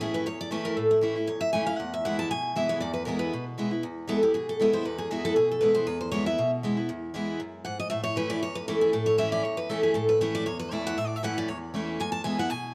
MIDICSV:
0, 0, Header, 1, 3, 480
1, 0, Start_track
1, 0, Tempo, 254994
1, 1461, Time_signature, 4, 2, 24, 8
1, 23984, End_track
2, 0, Start_track
2, 0, Title_t, "Steel-string acoustic guitar"
2, 0, Program_c, 0, 25
2, 14, Note_on_c, 0, 68, 66
2, 268, Note_on_c, 0, 71, 87
2, 270, Note_off_c, 0, 68, 0
2, 488, Note_off_c, 0, 71, 0
2, 500, Note_on_c, 0, 73, 84
2, 753, Note_off_c, 0, 73, 0
2, 764, Note_on_c, 0, 74, 99
2, 970, Note_off_c, 0, 74, 0
2, 978, Note_on_c, 0, 71, 77
2, 1221, Note_on_c, 0, 70, 89
2, 1232, Note_off_c, 0, 71, 0
2, 1456, Note_off_c, 0, 70, 0
2, 1456, Note_on_c, 0, 69, 79
2, 1708, Note_on_c, 0, 64, 83
2, 1711, Note_off_c, 0, 69, 0
2, 1844, Note_off_c, 0, 64, 0
2, 2399, Note_on_c, 0, 73, 80
2, 2646, Note_on_c, 0, 76, 96
2, 2662, Note_off_c, 0, 73, 0
2, 2867, Note_off_c, 0, 76, 0
2, 2874, Note_on_c, 0, 80, 95
2, 3126, Note_off_c, 0, 80, 0
2, 3134, Note_on_c, 0, 77, 97
2, 3336, Note_off_c, 0, 77, 0
2, 3336, Note_on_c, 0, 78, 95
2, 3610, Note_off_c, 0, 78, 0
2, 3644, Note_on_c, 0, 76, 82
2, 3856, Note_off_c, 0, 76, 0
2, 3859, Note_on_c, 0, 78, 86
2, 4112, Note_off_c, 0, 78, 0
2, 4120, Note_on_c, 0, 81, 102
2, 4334, Note_off_c, 0, 81, 0
2, 4343, Note_on_c, 0, 80, 93
2, 4789, Note_off_c, 0, 80, 0
2, 4825, Note_on_c, 0, 76, 75
2, 5068, Note_on_c, 0, 73, 88
2, 5075, Note_off_c, 0, 76, 0
2, 5272, Note_off_c, 0, 73, 0
2, 5280, Note_on_c, 0, 74, 80
2, 5517, Note_off_c, 0, 74, 0
2, 5525, Note_on_c, 0, 71, 75
2, 5738, Note_off_c, 0, 71, 0
2, 5745, Note_on_c, 0, 70, 76
2, 5999, Note_off_c, 0, 70, 0
2, 6006, Note_on_c, 0, 71, 85
2, 6469, Note_off_c, 0, 71, 0
2, 7699, Note_on_c, 0, 69, 90
2, 7950, Note_off_c, 0, 69, 0
2, 7958, Note_on_c, 0, 67, 87
2, 8164, Note_off_c, 0, 67, 0
2, 8171, Note_on_c, 0, 68, 79
2, 8428, Note_off_c, 0, 68, 0
2, 8453, Note_on_c, 0, 69, 83
2, 8660, Note_off_c, 0, 69, 0
2, 8693, Note_on_c, 0, 71, 86
2, 8902, Note_off_c, 0, 71, 0
2, 8910, Note_on_c, 0, 72, 94
2, 9154, Note_off_c, 0, 72, 0
2, 9154, Note_on_c, 0, 71, 85
2, 9381, Note_on_c, 0, 68, 92
2, 9399, Note_off_c, 0, 71, 0
2, 9603, Note_off_c, 0, 68, 0
2, 9622, Note_on_c, 0, 66, 81
2, 9871, Note_off_c, 0, 66, 0
2, 9879, Note_on_c, 0, 69, 103
2, 10080, Note_off_c, 0, 69, 0
2, 10087, Note_on_c, 0, 68, 79
2, 10345, Note_off_c, 0, 68, 0
2, 10380, Note_on_c, 0, 69, 88
2, 10554, Note_on_c, 0, 71, 84
2, 10583, Note_off_c, 0, 69, 0
2, 10807, Note_off_c, 0, 71, 0
2, 10815, Note_on_c, 0, 72, 102
2, 11039, Note_off_c, 0, 72, 0
2, 11039, Note_on_c, 0, 71, 86
2, 11298, Note_off_c, 0, 71, 0
2, 11306, Note_on_c, 0, 72, 89
2, 11503, Note_off_c, 0, 72, 0
2, 11511, Note_on_c, 0, 73, 96
2, 11777, Note_off_c, 0, 73, 0
2, 11788, Note_on_c, 0, 76, 101
2, 12240, Note_off_c, 0, 76, 0
2, 14392, Note_on_c, 0, 78, 86
2, 14658, Note_off_c, 0, 78, 0
2, 14673, Note_on_c, 0, 75, 92
2, 14858, Note_off_c, 0, 75, 0
2, 14865, Note_on_c, 0, 76, 93
2, 15117, Note_off_c, 0, 76, 0
2, 15124, Note_on_c, 0, 73, 98
2, 15356, Note_off_c, 0, 73, 0
2, 15377, Note_on_c, 0, 71, 85
2, 15619, Note_on_c, 0, 74, 104
2, 15632, Note_off_c, 0, 71, 0
2, 15843, Note_off_c, 0, 74, 0
2, 15860, Note_on_c, 0, 73, 88
2, 16101, Note_on_c, 0, 71, 87
2, 16113, Note_off_c, 0, 73, 0
2, 16325, Note_off_c, 0, 71, 0
2, 16337, Note_on_c, 0, 69, 87
2, 16582, Note_off_c, 0, 69, 0
2, 16590, Note_on_c, 0, 68, 89
2, 16802, Note_off_c, 0, 68, 0
2, 16810, Note_on_c, 0, 69, 77
2, 17055, Note_on_c, 0, 73, 87
2, 17068, Note_off_c, 0, 69, 0
2, 17279, Note_off_c, 0, 73, 0
2, 17286, Note_on_c, 0, 76, 102
2, 17537, Note_off_c, 0, 76, 0
2, 17544, Note_on_c, 0, 74, 95
2, 17767, Note_off_c, 0, 74, 0
2, 17767, Note_on_c, 0, 73, 86
2, 18017, Note_on_c, 0, 71, 90
2, 18027, Note_off_c, 0, 73, 0
2, 18250, Note_off_c, 0, 71, 0
2, 18250, Note_on_c, 0, 69, 76
2, 18501, Note_off_c, 0, 69, 0
2, 18508, Note_on_c, 0, 68, 81
2, 18706, Note_off_c, 0, 68, 0
2, 18714, Note_on_c, 0, 69, 82
2, 18981, Note_off_c, 0, 69, 0
2, 18987, Note_on_c, 0, 71, 90
2, 19209, Note_off_c, 0, 71, 0
2, 19221, Note_on_c, 0, 73, 98
2, 19469, Note_off_c, 0, 73, 0
2, 19477, Note_on_c, 0, 74, 110
2, 19681, Note_off_c, 0, 74, 0
2, 19688, Note_on_c, 0, 73, 90
2, 19936, Note_off_c, 0, 73, 0
2, 19943, Note_on_c, 0, 71, 94
2, 20183, Note_off_c, 0, 71, 0
2, 20183, Note_on_c, 0, 74, 85
2, 20436, Note_off_c, 0, 74, 0
2, 20455, Note_on_c, 0, 78, 115
2, 20667, Note_off_c, 0, 78, 0
2, 20667, Note_on_c, 0, 76, 88
2, 20841, Note_off_c, 0, 76, 0
2, 20841, Note_on_c, 0, 74, 96
2, 21005, Note_off_c, 0, 74, 0
2, 21005, Note_on_c, 0, 76, 93
2, 21150, Note_off_c, 0, 76, 0
2, 21162, Note_on_c, 0, 78, 101
2, 21406, Note_off_c, 0, 78, 0
2, 21417, Note_on_c, 0, 74, 97
2, 21620, Note_off_c, 0, 74, 0
2, 21620, Note_on_c, 0, 73, 98
2, 21777, Note_off_c, 0, 73, 0
2, 22597, Note_on_c, 0, 80, 101
2, 22804, Note_off_c, 0, 80, 0
2, 22811, Note_on_c, 0, 81, 109
2, 23035, Note_off_c, 0, 81, 0
2, 23042, Note_on_c, 0, 80, 101
2, 23306, Note_off_c, 0, 80, 0
2, 23328, Note_on_c, 0, 78, 99
2, 23527, Note_off_c, 0, 78, 0
2, 23527, Note_on_c, 0, 80, 109
2, 23984, Note_off_c, 0, 80, 0
2, 23984, End_track
3, 0, Start_track
3, 0, Title_t, "Steel-string acoustic guitar"
3, 0, Program_c, 1, 25
3, 0, Note_on_c, 1, 45, 93
3, 11, Note_on_c, 1, 52, 81
3, 25, Note_on_c, 1, 57, 79
3, 42, Note_on_c, 1, 61, 83
3, 45, Note_on_c, 1, 64, 91
3, 456, Note_off_c, 1, 45, 0
3, 474, Note_off_c, 1, 52, 0
3, 482, Note_off_c, 1, 57, 0
3, 488, Note_on_c, 1, 40, 80
3, 490, Note_off_c, 1, 61, 0
3, 491, Note_off_c, 1, 64, 0
3, 953, Note_on_c, 1, 52, 82
3, 963, Note_on_c, 1, 57, 89
3, 977, Note_on_c, 1, 61, 90
3, 984, Note_on_c, 1, 64, 100
3, 1411, Note_off_c, 1, 40, 0
3, 1425, Note_off_c, 1, 52, 0
3, 1430, Note_off_c, 1, 57, 0
3, 1437, Note_off_c, 1, 61, 0
3, 1441, Note_off_c, 1, 64, 0
3, 1447, Note_on_c, 1, 45, 92
3, 1907, Note_on_c, 1, 52, 86
3, 1929, Note_on_c, 1, 57, 87
3, 1941, Note_on_c, 1, 61, 88
3, 1943, Note_on_c, 1, 64, 89
3, 2159, Note_off_c, 1, 64, 0
3, 2174, Note_off_c, 1, 52, 0
3, 2181, Note_on_c, 1, 64, 60
3, 2185, Note_off_c, 1, 57, 0
3, 2191, Note_off_c, 1, 61, 0
3, 2214, Note_on_c, 1, 61, 51
3, 2370, Note_off_c, 1, 45, 0
3, 2403, Note_off_c, 1, 64, 0
3, 2415, Note_on_c, 1, 40, 78
3, 2419, Note_off_c, 1, 61, 0
3, 2879, Note_on_c, 1, 52, 85
3, 2898, Note_on_c, 1, 57, 87
3, 2905, Note_on_c, 1, 61, 85
3, 2916, Note_on_c, 1, 64, 96
3, 3122, Note_off_c, 1, 64, 0
3, 3140, Note_off_c, 1, 52, 0
3, 3144, Note_on_c, 1, 64, 57
3, 3149, Note_off_c, 1, 57, 0
3, 3153, Note_off_c, 1, 61, 0
3, 3184, Note_on_c, 1, 61, 45
3, 3334, Note_off_c, 1, 40, 0
3, 3364, Note_off_c, 1, 64, 0
3, 3382, Note_on_c, 1, 40, 93
3, 3384, Note_off_c, 1, 61, 0
3, 3857, Note_on_c, 1, 52, 81
3, 3865, Note_on_c, 1, 56, 88
3, 3881, Note_on_c, 1, 59, 87
3, 3888, Note_on_c, 1, 64, 99
3, 4297, Note_off_c, 1, 40, 0
3, 4317, Note_off_c, 1, 52, 0
3, 4321, Note_off_c, 1, 56, 0
3, 4329, Note_off_c, 1, 59, 0
3, 4332, Note_off_c, 1, 64, 0
3, 4341, Note_on_c, 1, 47, 83
3, 4810, Note_on_c, 1, 52, 76
3, 4823, Note_on_c, 1, 56, 90
3, 4834, Note_on_c, 1, 59, 91
3, 4849, Note_on_c, 1, 64, 94
3, 5257, Note_off_c, 1, 47, 0
3, 5274, Note_off_c, 1, 52, 0
3, 5280, Note_off_c, 1, 56, 0
3, 5285, Note_off_c, 1, 59, 0
3, 5293, Note_off_c, 1, 64, 0
3, 5303, Note_on_c, 1, 40, 95
3, 5769, Note_on_c, 1, 52, 93
3, 5786, Note_on_c, 1, 56, 90
3, 5802, Note_on_c, 1, 59, 90
3, 5813, Note_on_c, 1, 64, 97
3, 6218, Note_off_c, 1, 40, 0
3, 6233, Note_off_c, 1, 52, 0
3, 6241, Note_off_c, 1, 56, 0
3, 6249, Note_off_c, 1, 59, 0
3, 6255, Note_off_c, 1, 64, 0
3, 6275, Note_on_c, 1, 47, 77
3, 6732, Note_on_c, 1, 52, 77
3, 6744, Note_on_c, 1, 56, 89
3, 6757, Note_on_c, 1, 59, 87
3, 6760, Note_on_c, 1, 64, 93
3, 6961, Note_off_c, 1, 64, 0
3, 6984, Note_on_c, 1, 64, 56
3, 6986, Note_off_c, 1, 52, 0
3, 6992, Note_off_c, 1, 56, 0
3, 6999, Note_off_c, 1, 59, 0
3, 7020, Note_on_c, 1, 59, 44
3, 7184, Note_off_c, 1, 47, 0
3, 7203, Note_off_c, 1, 64, 0
3, 7212, Note_on_c, 1, 40, 97
3, 7221, Note_off_c, 1, 59, 0
3, 7671, Note_on_c, 1, 52, 86
3, 7689, Note_on_c, 1, 56, 97
3, 7695, Note_on_c, 1, 59, 95
3, 7709, Note_on_c, 1, 64, 88
3, 7926, Note_off_c, 1, 64, 0
3, 7935, Note_off_c, 1, 52, 0
3, 7944, Note_off_c, 1, 56, 0
3, 7947, Note_off_c, 1, 59, 0
3, 7949, Note_on_c, 1, 64, 62
3, 7980, Note_on_c, 1, 59, 47
3, 8132, Note_off_c, 1, 40, 0
3, 8166, Note_off_c, 1, 64, 0
3, 8181, Note_off_c, 1, 59, 0
3, 8186, Note_on_c, 1, 47, 83
3, 8651, Note_on_c, 1, 52, 88
3, 8668, Note_on_c, 1, 56, 77
3, 8680, Note_on_c, 1, 59, 93
3, 8690, Note_on_c, 1, 64, 84
3, 9099, Note_off_c, 1, 47, 0
3, 9113, Note_off_c, 1, 52, 0
3, 9122, Note_off_c, 1, 56, 0
3, 9128, Note_off_c, 1, 59, 0
3, 9133, Note_off_c, 1, 64, 0
3, 9138, Note_on_c, 1, 40, 101
3, 9611, Note_on_c, 1, 52, 85
3, 9620, Note_on_c, 1, 56, 93
3, 9631, Note_on_c, 1, 59, 92
3, 9642, Note_on_c, 1, 64, 100
3, 10055, Note_off_c, 1, 40, 0
3, 10073, Note_off_c, 1, 52, 0
3, 10077, Note_off_c, 1, 56, 0
3, 10083, Note_off_c, 1, 59, 0
3, 10088, Note_off_c, 1, 64, 0
3, 10095, Note_on_c, 1, 47, 86
3, 10563, Note_on_c, 1, 52, 77
3, 10582, Note_on_c, 1, 56, 90
3, 10596, Note_on_c, 1, 59, 81
3, 10603, Note_on_c, 1, 64, 100
3, 11013, Note_off_c, 1, 47, 0
3, 11029, Note_off_c, 1, 52, 0
3, 11038, Note_off_c, 1, 56, 0
3, 11043, Note_on_c, 1, 40, 96
3, 11046, Note_off_c, 1, 59, 0
3, 11049, Note_off_c, 1, 64, 0
3, 11523, Note_on_c, 1, 52, 96
3, 11541, Note_on_c, 1, 56, 83
3, 11553, Note_on_c, 1, 59, 89
3, 11563, Note_on_c, 1, 64, 90
3, 11766, Note_off_c, 1, 64, 0
3, 11781, Note_off_c, 1, 52, 0
3, 11789, Note_on_c, 1, 64, 61
3, 11790, Note_off_c, 1, 56, 0
3, 11796, Note_off_c, 1, 59, 0
3, 11830, Note_on_c, 1, 59, 53
3, 11967, Note_off_c, 1, 40, 0
3, 12005, Note_off_c, 1, 64, 0
3, 12017, Note_on_c, 1, 47, 84
3, 12026, Note_off_c, 1, 59, 0
3, 12484, Note_on_c, 1, 52, 81
3, 12497, Note_on_c, 1, 56, 94
3, 12513, Note_on_c, 1, 59, 95
3, 12515, Note_on_c, 1, 64, 94
3, 12719, Note_off_c, 1, 64, 0
3, 12741, Note_on_c, 1, 64, 57
3, 12742, Note_off_c, 1, 52, 0
3, 12748, Note_off_c, 1, 56, 0
3, 12756, Note_off_c, 1, 59, 0
3, 12782, Note_on_c, 1, 59, 43
3, 12935, Note_off_c, 1, 47, 0
3, 12962, Note_off_c, 1, 64, 0
3, 12967, Note_on_c, 1, 40, 94
3, 12982, Note_off_c, 1, 59, 0
3, 13437, Note_on_c, 1, 52, 88
3, 13447, Note_on_c, 1, 56, 88
3, 13462, Note_on_c, 1, 59, 94
3, 13472, Note_on_c, 1, 64, 100
3, 13890, Note_off_c, 1, 40, 0
3, 13907, Note_off_c, 1, 52, 0
3, 13912, Note_off_c, 1, 56, 0
3, 13919, Note_off_c, 1, 59, 0
3, 13924, Note_off_c, 1, 64, 0
3, 13924, Note_on_c, 1, 42, 78
3, 14390, Note_off_c, 1, 42, 0
3, 14411, Note_on_c, 1, 44, 85
3, 14874, Note_off_c, 1, 44, 0
3, 14891, Note_on_c, 1, 45, 101
3, 15357, Note_on_c, 1, 52, 85
3, 15374, Note_on_c, 1, 57, 89
3, 15385, Note_on_c, 1, 61, 86
3, 15388, Note_on_c, 1, 64, 88
3, 15813, Note_off_c, 1, 45, 0
3, 15827, Note_off_c, 1, 52, 0
3, 15836, Note_off_c, 1, 57, 0
3, 15842, Note_off_c, 1, 61, 0
3, 15843, Note_off_c, 1, 64, 0
3, 15861, Note_on_c, 1, 40, 86
3, 16338, Note_on_c, 1, 52, 82
3, 16356, Note_on_c, 1, 57, 90
3, 16366, Note_on_c, 1, 61, 79
3, 16379, Note_on_c, 1, 64, 94
3, 16778, Note_off_c, 1, 40, 0
3, 16798, Note_off_c, 1, 52, 0
3, 16807, Note_off_c, 1, 57, 0
3, 16812, Note_off_c, 1, 61, 0
3, 16816, Note_on_c, 1, 45, 100
3, 16819, Note_off_c, 1, 64, 0
3, 17275, Note_on_c, 1, 52, 88
3, 17291, Note_on_c, 1, 57, 87
3, 17299, Note_on_c, 1, 61, 95
3, 17310, Note_on_c, 1, 64, 97
3, 17736, Note_off_c, 1, 45, 0
3, 17747, Note_off_c, 1, 52, 0
3, 17755, Note_off_c, 1, 57, 0
3, 17759, Note_off_c, 1, 61, 0
3, 17765, Note_off_c, 1, 64, 0
3, 17786, Note_on_c, 1, 40, 81
3, 18248, Note_on_c, 1, 52, 83
3, 18261, Note_on_c, 1, 57, 86
3, 18271, Note_on_c, 1, 61, 92
3, 18280, Note_on_c, 1, 64, 102
3, 18701, Note_off_c, 1, 40, 0
3, 18714, Note_off_c, 1, 52, 0
3, 18721, Note_off_c, 1, 57, 0
3, 18726, Note_off_c, 1, 61, 0
3, 18730, Note_off_c, 1, 64, 0
3, 18732, Note_on_c, 1, 45, 96
3, 19211, Note_on_c, 1, 52, 89
3, 19229, Note_on_c, 1, 57, 94
3, 19237, Note_on_c, 1, 61, 89
3, 19251, Note_on_c, 1, 64, 95
3, 19654, Note_off_c, 1, 45, 0
3, 19676, Note_off_c, 1, 52, 0
3, 19685, Note_off_c, 1, 57, 0
3, 19689, Note_off_c, 1, 61, 0
3, 19696, Note_off_c, 1, 64, 0
3, 19697, Note_on_c, 1, 40, 87
3, 20169, Note_on_c, 1, 52, 92
3, 20177, Note_on_c, 1, 57, 90
3, 20187, Note_on_c, 1, 61, 88
3, 20203, Note_on_c, 1, 64, 102
3, 20617, Note_off_c, 1, 40, 0
3, 20635, Note_off_c, 1, 52, 0
3, 20639, Note_off_c, 1, 57, 0
3, 20644, Note_off_c, 1, 61, 0
3, 20652, Note_off_c, 1, 64, 0
3, 20661, Note_on_c, 1, 45, 92
3, 21136, Note_on_c, 1, 52, 90
3, 21146, Note_on_c, 1, 57, 93
3, 21159, Note_on_c, 1, 61, 96
3, 21168, Note_on_c, 1, 64, 86
3, 21579, Note_off_c, 1, 45, 0
3, 21599, Note_off_c, 1, 52, 0
3, 21604, Note_off_c, 1, 57, 0
3, 21610, Note_off_c, 1, 61, 0
3, 21614, Note_on_c, 1, 40, 85
3, 21615, Note_off_c, 1, 64, 0
3, 22094, Note_on_c, 1, 52, 78
3, 22109, Note_on_c, 1, 57, 84
3, 22116, Note_on_c, 1, 61, 85
3, 22136, Note_on_c, 1, 64, 92
3, 22536, Note_off_c, 1, 40, 0
3, 22558, Note_off_c, 1, 52, 0
3, 22565, Note_off_c, 1, 57, 0
3, 22569, Note_off_c, 1, 61, 0
3, 22579, Note_off_c, 1, 64, 0
3, 22583, Note_on_c, 1, 40, 95
3, 23046, Note_on_c, 1, 52, 87
3, 23061, Note_on_c, 1, 56, 90
3, 23074, Note_on_c, 1, 59, 85
3, 23087, Note_on_c, 1, 64, 99
3, 23284, Note_off_c, 1, 64, 0
3, 23306, Note_off_c, 1, 52, 0
3, 23307, Note_on_c, 1, 64, 61
3, 23313, Note_off_c, 1, 56, 0
3, 23320, Note_off_c, 1, 59, 0
3, 23342, Note_on_c, 1, 59, 51
3, 23501, Note_off_c, 1, 40, 0
3, 23527, Note_on_c, 1, 47, 83
3, 23528, Note_off_c, 1, 64, 0
3, 23545, Note_off_c, 1, 59, 0
3, 23984, Note_off_c, 1, 47, 0
3, 23984, End_track
0, 0, End_of_file